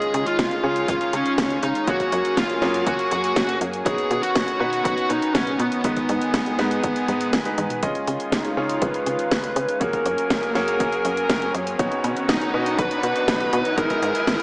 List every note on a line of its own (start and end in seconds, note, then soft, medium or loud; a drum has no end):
0.00 1.86 D#3 medium
0.00 1.84 G#3 medium
0.00 0.61 C#4 medium
0.00 3.82 C#4 medium
0.00 0.61 F4 medium
0.00 1.86 F4 medium
0.00 0.27 G#4 loud
0.00 0.61 G#4 medium
0.00 0.61 D#5 medium
0.00 closed hi-hat soft
0.14 0.25 C#3 loud
0.14 closed hi-hat medium
0.27 0.63 F4 medium
0.27 closed hi-hat soft
0.39 0.50 C#2 medium
0.39 kick loud
0.39 snare loud
0.39 closed hi-hat medium
0.51 closed hi-hat soft
0.64 0.85 C#3 medium
0.64 1.85 C#4 medium
0.64 1.85 F4 medium
0.64 0.88 F4 loud
0.64 1.85 G#4 medium
0.64 1.85 C#5 medium
0.76 closed hi-hat soft
0.88 0.99 C#2 loud
0.88 1.14 F4 loud
0.88 kick loud
0.88 closed hi-hat medium
1.01 closed hi-hat soft
1.13 1.24 C#3 medium
1.13 1.63 C#4 medium
1.13 closed hi-hat medium
1.26 closed hi-hat soft
1.38 1.60 C#2 medium
1.38 kick loud
1.38 snare loud
1.38 closed hi-hat medium
1.50 closed hi-hat soft
1.63 1.74 C#3 medium
1.63 1.89 D#4 medium
1.63 closed hi-hat medium
1.75 closed hi-hat soft
1.87 1.98 F#1 loud
1.87 3.84 F#3 medium
1.87 3.84 A#3 medium
1.87 2.59 A#3 medium
1.87 2.59 F#4 medium
1.87 2.37 F#4 loud
1.87 3.84 G#4 medium
1.87 2.59 G#4 medium
1.87 2.59 C#5 medium
1.87 kick loud
1.87 closed hi-hat medium
2.00 kick medium
2.00 closed hi-hat soft
2.12 2.23 F#2 medium
2.12 closed hi-hat medium
2.25 closed hi-hat soft
2.37 2.48 F#1 medium
2.37 2.87 F4 medium
2.37 kick loud
2.37 snare loud
2.37 closed hi-hat medium
2.50 closed hi-hat soft
2.62 2.84 F#2 medium
2.62 3.83 A#3 medium
2.62 3.83 F#4 medium
2.62 3.83 G#4 medium
2.62 3.83 C#5 loud
2.62 snare medium
2.74 closed hi-hat soft
2.87 2.98 F#1 loud
2.87 3.11 F#4 loud
2.87 kick loud
2.87 closed hi-hat medium
2.99 closed hi-hat soft
3.11 3.33 F#2 medium
3.11 3.58 F#4 medium
3.11 closed hi-hat medium
3.24 closed hi-hat soft
3.36 3.58 F#1 medium
3.36 kick loud
3.36 snare loud
3.36 closed hi-hat medium
3.49 closed hi-hat soft
3.61 3.83 F#2 medium
3.61 closed hi-hat medium
3.73 closed hi-hat soft
3.86 3.97 B1 loud
3.86 7.79 D#3 medium
3.86 4.57 B3 medium
3.86 7.79 B3 medium
3.86 5.82 C#4 medium
3.86 4.57 D#4 medium
3.86 4.57 F#4 medium
3.86 5.82 F#4 medium
3.86 4.22 G#4 loud
3.86 4.57 C#5 medium
3.86 kick loud
3.86 closed hi-hat medium
3.98 closed hi-hat soft
4.11 4.22 B2 loud
4.11 closed hi-hat medium
4.23 4.59 F#4 loud
4.23 closed hi-hat soft
4.35 4.46 B1 medium
4.35 kick loud
4.35 snare loud
4.35 closed hi-hat loud
4.48 closed hi-hat soft
4.60 4.82 B2 medium
4.60 5.81 B3 medium
4.60 5.81 D#4 medium
4.60 4.84 F#4 loud
4.60 5.81 F#4 medium
4.60 5.81 B4 medium
4.73 closed hi-hat soft
4.85 4.96 B1 loud
4.85 5.10 F#4 loud
4.85 kick loud
4.85 closed hi-hat medium
4.98 closed hi-hat soft
5.10 5.21 B2 medium
5.10 5.34 D#4 medium
5.10 closed hi-hat medium
5.22 closed hi-hat soft
5.34 5.57 B1 medium
5.34 5.60 C#4 medium
5.34 kick loud
5.34 snare loud
5.34 closed hi-hat medium
5.47 closed hi-hat soft
5.59 5.70 B2 medium
5.59 7.29 B3 medium
5.59 closed hi-hat medium
5.72 closed hi-hat soft
5.84 5.95 G#1 loud
5.84 7.80 G#3 medium
5.84 6.56 G#3 medium
5.84 6.56 B3 medium
5.84 6.56 D#4 medium
5.84 7.81 G#4 medium
5.84 6.56 B4 medium
5.84 kick loud
5.84 closed hi-hat loud
5.97 kick medium
5.97 closed hi-hat soft
6.09 6.20 G#2 loud
6.09 closed hi-hat medium
6.21 closed hi-hat soft
6.34 6.45 G#1 medium
6.34 kick loud
6.34 snare loud
6.34 closed hi-hat loud
6.46 closed hi-hat soft
6.59 6.80 G#2 medium
6.59 7.06 G#3 medium
6.59 7.06 B3 medium
6.59 7.06 D#4 medium
6.59 7.06 B4 loud
6.59 snare medium
6.59 closed hi-hat soft
6.71 closed hi-hat soft
6.83 6.94 G#1 loud
6.83 kick loud
6.83 closed hi-hat loud
6.96 closed hi-hat soft
7.08 7.30 G#2 medium
7.08 7.42 G#3 medium
7.08 7.43 B3 medium
7.08 7.43 D#4 medium
7.08 7.43 B4 medium
7.08 kick medium
7.08 closed hi-hat medium
7.21 closed hi-hat soft
7.33 7.44 G#1 medium
7.33 kick loud
7.33 snare loud
7.33 closed hi-hat loud
7.45 7.80 G#3 medium
7.45 7.80 B3 medium
7.45 7.80 D#4 medium
7.45 7.80 B4 medium
7.45 closed hi-hat soft
7.58 7.69 G#2 loud
7.58 closed hi-hat medium
7.58 high tom medium
7.70 closed hi-hat soft
7.70 mid tom medium
7.82 7.94 C#2 loud
7.82 9.79 D#3 medium
7.82 9.79 G#3 medium
7.82 13.74 C#4 medium
7.82 8.54 C#4 medium
7.82 9.79 F4 medium
7.82 8.54 F4 medium
7.82 8.54 G#4 medium
7.82 8.54 D#5 medium
7.82 kick loud
7.82 closed hi-hat loud
7.82 riser medium
7.95 closed hi-hat soft
8.07 8.18 C#3 medium
8.07 closed hi-hat medium
8.20 closed hi-hat soft
8.32 8.43 C#2 medium
8.32 8.83 D#4 medium
8.32 kick loud
8.32 snare loud
8.32 closed hi-hat loud
8.45 closed hi-hat soft
8.57 8.79 C#3 medium
8.57 9.78 C#4 medium
8.57 9.78 F4 medium
8.57 9.78 G#4 medium
8.57 9.78 C#5 medium
8.69 closed hi-hat soft
8.82 8.93 C#2 loud
8.82 9.81 B4 loud
8.82 kick loud
8.82 closed hi-hat medium
8.94 closed hi-hat soft
9.06 9.17 C#3 medium
9.06 closed hi-hat medium
9.19 closed hi-hat soft
9.31 9.53 C#2 medium
9.31 kick loud
9.31 snare loud
9.31 closed hi-hat medium
9.44 closed hi-hat soft
9.56 9.67 C#3 loud
9.56 closed hi-hat medium
9.69 closed hi-hat soft
9.81 9.92 F#1 loud
9.81 11.77 F#3 medium
9.81 10.52 A#3 medium
9.81 11.77 A#3 medium
9.81 10.52 F#4 medium
9.81 10.52 G#4 medium
9.81 11.77 G#4 medium
9.81 10.51 A#4 loud
9.81 10.52 C#5 medium
9.81 kick loud
9.81 closed hi-hat medium
9.93 kick medium
9.93 closed hi-hat soft
10.06 10.17 F#2 loud
10.06 closed hi-hat medium
10.18 closed hi-hat soft
10.30 10.41 F#1 medium
10.30 kick loud
10.30 snare loud
10.30 closed hi-hat medium
10.43 closed hi-hat soft
10.55 10.77 F#2 medium
10.55 11.76 A#3 medium
10.55 11.76 F#4 medium
10.55 11.76 G#4 medium
10.55 11.51 A#4 medium
10.55 11.76 C#5 loud
10.55 snare medium
10.55 closed hi-hat soft
10.68 closed hi-hat soft
10.80 10.91 F#1 loud
10.80 kick loud
10.80 closed hi-hat medium
10.92 closed hi-hat soft
11.05 11.27 F#2 medium
11.05 closed hi-hat medium
11.17 closed hi-hat soft
11.30 11.51 F#1 medium
11.30 kick loud
11.30 snare loud
11.30 closed hi-hat medium
11.42 closed hi-hat soft
11.54 11.76 F#2 medium
11.54 closed hi-hat medium
11.67 closed hi-hat soft
11.79 11.90 B1 loud
11.79 13.76 D#3 medium
11.79 12.51 B3 medium
11.79 14.43 B3 medium
11.79 12.51 D#4 medium
11.79 12.51 F#4 medium
11.79 13.76 F#4 loud
11.79 12.51 C#5 medium
11.79 kick loud
11.79 closed hi-hat medium
11.92 closed hi-hat soft
12.04 12.15 B2 loud
12.04 closed hi-hat medium
12.17 closed hi-hat soft
12.29 12.40 B1 medium
12.29 12.75 D#4 medium
12.29 kick loud
12.29 snare loud
12.29 closed hi-hat medium
12.41 closed hi-hat soft
12.54 12.76 B2 medium
12.54 13.75 B3 medium
12.54 13.75 D#4 medium
12.54 13.75 F#4 medium
12.54 13.75 B4 medium
12.66 closed hi-hat soft
12.78 12.89 B1 loud
12.78 13.77 B4 loud
12.78 kick loud
12.78 closed hi-hat medium
12.91 closed hi-hat soft
13.03 13.14 B2 medium
13.03 closed hi-hat medium
13.16 closed hi-hat soft
13.28 13.50 B1 medium
13.28 kick loud
13.28 snare loud
13.28 closed hi-hat medium
13.40 closed hi-hat soft
13.53 13.64 B2 loud
13.53 closed hi-hat medium
13.65 closed hi-hat soft
13.77 13.89 G#1 loud
13.77 14.43 D#3 medium
13.77 14.43 G#3 medium
13.77 14.43 B3 medium
13.77 14.43 D#4 medium
13.77 14.43 G#4 medium
13.77 14.43 G#4 loud
13.77 14.43 A#4 loud
13.77 kick loud
13.77 closed hi-hat medium
13.90 kick medium
13.90 closed hi-hat soft
14.02 14.13 G#2 loud
14.02 closed hi-hat medium
14.15 closed hi-hat soft
14.27 14.38 G#1 medium
14.27 kick loud
14.27 snare loud
14.27 closed hi-hat medium